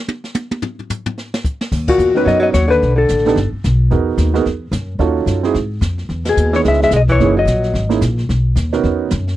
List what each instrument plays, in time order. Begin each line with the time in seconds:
0.08 high tom
0.24 snare
0.35 hi-hat pedal, high tom
0.51 high tom
0.62 floor tom
0.79 floor tom
0.90 floor tom, hi-hat pedal
1.06 floor tom
1.18 snare
1.34 snare
1.44 kick, hi-hat pedal
1.61 snare
1.72 upright bass D#2, brush sweep, kick, snare, crash
1.88 tenor saxophone A#2, hollow-body jazz guitar F#4, kick, ride
1.98 upright bass E2, hi-hat pedal
2.14 tenor saxophone D#3, grand piano B3 C#4 D#4 F#4 A#4, hollow-body jazz guitar B4, snare
2.25 upright bass F#2, tenor saxophone F#3, hollow-body jazz guitar D#5, brush sweep, snare
2.40 tenor saxophone F#3, hollow-body jazz guitar D#5
2.52 upright bass D#2, tenor saxophone F#3, hollow-body jazz guitar C#5, snare, hi-hat pedal
2.68 tenor saxophone D3, hollow-body jazz guitar B4, snare
2.82 upright bass B1, brush sweep, snare
2.95 tenor saxophone D3, hollow-body jazz guitar A4
3.09 upright bass A1, snare, hi-hat pedal
3.18 snare
3.25 grand piano B3 D4 D#4 G4 A4, snare
3.28 snare
3.36 upright bass G1, brush sweep, snare
3.52 muted upright bass stroke
3.64 upright bass B1, snare, hi-hat pedal
3.90 upright bass E2, grand piano B3 D#4 F#4 G#4 A#4, brush sweep, snare
4.18 upright bass D#2, snare, hi-hat pedal
4.34 grand piano B3 D#4 F#4 G#4 A#4, snare
4.45 upright bass E2, brush sweep, snare
4.72 upright bass F#2, snare, hi-hat pedal
4.99 upright bass D#2, grand piano C#4 D#4 F4 F#4 A4, brush sweep, snare
5.26 upright bass F#2, snare, hi-hat pedal
5.43 grand piano C4 D#4 E4 F#4 G#4, snare
5.54 upright bass G#2, brush sweep, snare
5.81 upright bass F2, snare, hi-hat pedal
5.98 snare
6.09 upright bass E2, brush sweep, snare
6.25 tenor saxophone B2, snare, ride
6.29 hollow-body jazz guitar G#4
6.37 upright bass D#2, hi-hat pedal
6.53 tenor saxophone E3, grand piano B3 C#4 D#4 E4 G#4, hollow-body jazz guitar C#5, snare
6.64 upright bass C#2, tenor saxophone G#3, hollow-body jazz guitar E5, brush sweep, snare
6.73 snare
6.82 tenor saxophone G#3, hollow-body jazz guitar E5, snare
6.91 upright bass B1, tenor saxophone G#3, snare, hi-hat pedal
6.96 hollow-body jazz guitar D#5
7.08 tenor saxophone E3, hollow-body jazz guitar C#5, kick, snare
7.18 upright bass F#1, grand piano A#3 C#4 D#4 E4 G#4, brush sweep, snare
7.37 tenor saxophone F#3, hollow-body jazz guitar D#5
7.45 upright bass A#1, snare, hi-hat pedal
7.63 snare
7.74 upright bass G#1, brush sweep, snare
7.89 grand piano A#3 C#4 D#4 E4 G#4, snare
8.01 upright bass A#1, snare, hi-hat pedal
8.18 snare
8.29 upright bass B1, brush sweep, snare
8.56 upright bass D#2, snare, hi-hat pedal
8.73 grand piano B3 C#4 D#4 F#4 A#4, snare
8.83 upright bass E2, brush sweep, snare
9.10 upright bass F#2, snare, hi-hat pedal
9.28 snare